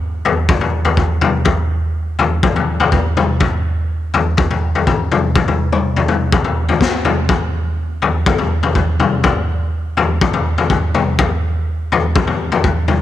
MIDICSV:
0, 0, Header, 1, 2, 480
1, 0, Start_track
1, 0, Tempo, 486224
1, 1449, Time_signature, 4, 2, 24, 8
1, 12851, End_track
2, 0, Start_track
2, 0, Title_t, "Drums"
2, 247, Note_on_c, 9, 43, 75
2, 345, Note_off_c, 9, 43, 0
2, 482, Note_on_c, 9, 36, 110
2, 484, Note_on_c, 9, 43, 82
2, 581, Note_off_c, 9, 36, 0
2, 582, Note_off_c, 9, 43, 0
2, 601, Note_on_c, 9, 43, 79
2, 700, Note_off_c, 9, 43, 0
2, 837, Note_on_c, 9, 43, 86
2, 936, Note_off_c, 9, 43, 0
2, 959, Note_on_c, 9, 36, 70
2, 960, Note_on_c, 9, 43, 70
2, 1058, Note_off_c, 9, 36, 0
2, 1059, Note_off_c, 9, 43, 0
2, 1198, Note_on_c, 9, 43, 80
2, 1198, Note_on_c, 9, 47, 71
2, 1297, Note_off_c, 9, 43, 0
2, 1297, Note_off_c, 9, 47, 0
2, 1431, Note_on_c, 9, 43, 85
2, 1438, Note_on_c, 9, 36, 107
2, 1530, Note_off_c, 9, 43, 0
2, 1536, Note_off_c, 9, 36, 0
2, 2159, Note_on_c, 9, 43, 73
2, 2258, Note_off_c, 9, 43, 0
2, 2399, Note_on_c, 9, 36, 115
2, 2400, Note_on_c, 9, 43, 86
2, 2498, Note_off_c, 9, 36, 0
2, 2498, Note_off_c, 9, 43, 0
2, 2526, Note_on_c, 9, 43, 80
2, 2625, Note_off_c, 9, 43, 0
2, 2763, Note_on_c, 9, 43, 83
2, 2862, Note_off_c, 9, 43, 0
2, 2883, Note_on_c, 9, 36, 67
2, 2887, Note_on_c, 9, 43, 77
2, 2982, Note_off_c, 9, 36, 0
2, 2985, Note_off_c, 9, 43, 0
2, 3128, Note_on_c, 9, 43, 80
2, 3128, Note_on_c, 9, 47, 80
2, 3227, Note_off_c, 9, 43, 0
2, 3227, Note_off_c, 9, 47, 0
2, 3360, Note_on_c, 9, 43, 88
2, 3363, Note_on_c, 9, 36, 108
2, 3458, Note_off_c, 9, 43, 0
2, 3462, Note_off_c, 9, 36, 0
2, 4085, Note_on_c, 9, 43, 79
2, 4184, Note_off_c, 9, 43, 0
2, 4317, Note_on_c, 9, 43, 79
2, 4325, Note_on_c, 9, 36, 112
2, 4416, Note_off_c, 9, 43, 0
2, 4424, Note_off_c, 9, 36, 0
2, 4449, Note_on_c, 9, 43, 80
2, 4547, Note_off_c, 9, 43, 0
2, 4691, Note_on_c, 9, 43, 75
2, 4790, Note_off_c, 9, 43, 0
2, 4808, Note_on_c, 9, 36, 71
2, 4808, Note_on_c, 9, 43, 79
2, 4906, Note_off_c, 9, 36, 0
2, 4907, Note_off_c, 9, 43, 0
2, 5050, Note_on_c, 9, 43, 85
2, 5050, Note_on_c, 9, 47, 72
2, 5149, Note_off_c, 9, 43, 0
2, 5149, Note_off_c, 9, 47, 0
2, 5287, Note_on_c, 9, 36, 109
2, 5287, Note_on_c, 9, 43, 81
2, 5385, Note_off_c, 9, 36, 0
2, 5386, Note_off_c, 9, 43, 0
2, 5409, Note_on_c, 9, 43, 77
2, 5409, Note_on_c, 9, 47, 75
2, 5507, Note_off_c, 9, 43, 0
2, 5507, Note_off_c, 9, 47, 0
2, 5651, Note_on_c, 9, 47, 84
2, 5750, Note_off_c, 9, 47, 0
2, 5888, Note_on_c, 9, 43, 81
2, 5987, Note_off_c, 9, 43, 0
2, 6006, Note_on_c, 9, 43, 69
2, 6006, Note_on_c, 9, 47, 67
2, 6105, Note_off_c, 9, 43, 0
2, 6105, Note_off_c, 9, 47, 0
2, 6244, Note_on_c, 9, 36, 110
2, 6244, Note_on_c, 9, 43, 85
2, 6342, Note_off_c, 9, 36, 0
2, 6343, Note_off_c, 9, 43, 0
2, 6362, Note_on_c, 9, 43, 81
2, 6461, Note_off_c, 9, 43, 0
2, 6601, Note_on_c, 9, 43, 79
2, 6700, Note_off_c, 9, 43, 0
2, 6721, Note_on_c, 9, 36, 70
2, 6732, Note_on_c, 9, 38, 74
2, 6819, Note_off_c, 9, 36, 0
2, 6831, Note_off_c, 9, 38, 0
2, 6958, Note_on_c, 9, 43, 85
2, 6958, Note_on_c, 9, 47, 75
2, 7056, Note_off_c, 9, 43, 0
2, 7056, Note_off_c, 9, 47, 0
2, 7197, Note_on_c, 9, 36, 112
2, 7198, Note_on_c, 9, 43, 81
2, 7296, Note_off_c, 9, 36, 0
2, 7296, Note_off_c, 9, 43, 0
2, 7917, Note_on_c, 9, 43, 72
2, 8016, Note_off_c, 9, 43, 0
2, 8157, Note_on_c, 9, 36, 115
2, 8159, Note_on_c, 9, 43, 84
2, 8256, Note_off_c, 9, 36, 0
2, 8257, Note_off_c, 9, 43, 0
2, 8277, Note_on_c, 9, 43, 79
2, 8375, Note_off_c, 9, 43, 0
2, 8519, Note_on_c, 9, 43, 81
2, 8618, Note_off_c, 9, 43, 0
2, 8640, Note_on_c, 9, 36, 67
2, 8642, Note_on_c, 9, 43, 79
2, 8739, Note_off_c, 9, 36, 0
2, 8740, Note_off_c, 9, 43, 0
2, 8881, Note_on_c, 9, 43, 81
2, 8881, Note_on_c, 9, 47, 77
2, 8980, Note_off_c, 9, 43, 0
2, 8980, Note_off_c, 9, 47, 0
2, 9118, Note_on_c, 9, 43, 88
2, 9121, Note_on_c, 9, 36, 112
2, 9217, Note_off_c, 9, 43, 0
2, 9220, Note_off_c, 9, 36, 0
2, 9842, Note_on_c, 9, 43, 74
2, 9941, Note_off_c, 9, 43, 0
2, 10083, Note_on_c, 9, 36, 107
2, 10083, Note_on_c, 9, 43, 80
2, 10182, Note_off_c, 9, 36, 0
2, 10182, Note_off_c, 9, 43, 0
2, 10203, Note_on_c, 9, 43, 85
2, 10302, Note_off_c, 9, 43, 0
2, 10444, Note_on_c, 9, 43, 82
2, 10543, Note_off_c, 9, 43, 0
2, 10563, Note_on_c, 9, 36, 72
2, 10563, Note_on_c, 9, 43, 73
2, 10661, Note_off_c, 9, 36, 0
2, 10662, Note_off_c, 9, 43, 0
2, 10805, Note_on_c, 9, 43, 80
2, 10805, Note_on_c, 9, 47, 76
2, 10903, Note_off_c, 9, 43, 0
2, 10903, Note_off_c, 9, 47, 0
2, 11045, Note_on_c, 9, 36, 121
2, 11051, Note_on_c, 9, 43, 83
2, 11143, Note_off_c, 9, 36, 0
2, 11150, Note_off_c, 9, 43, 0
2, 11767, Note_on_c, 9, 43, 78
2, 11866, Note_off_c, 9, 43, 0
2, 11999, Note_on_c, 9, 43, 85
2, 12000, Note_on_c, 9, 36, 115
2, 12098, Note_off_c, 9, 43, 0
2, 12099, Note_off_c, 9, 36, 0
2, 12116, Note_on_c, 9, 43, 82
2, 12215, Note_off_c, 9, 43, 0
2, 12358, Note_on_c, 9, 43, 89
2, 12457, Note_off_c, 9, 43, 0
2, 12479, Note_on_c, 9, 36, 69
2, 12480, Note_on_c, 9, 43, 75
2, 12578, Note_off_c, 9, 36, 0
2, 12579, Note_off_c, 9, 43, 0
2, 12715, Note_on_c, 9, 43, 81
2, 12715, Note_on_c, 9, 47, 73
2, 12814, Note_off_c, 9, 43, 0
2, 12814, Note_off_c, 9, 47, 0
2, 12851, End_track
0, 0, End_of_file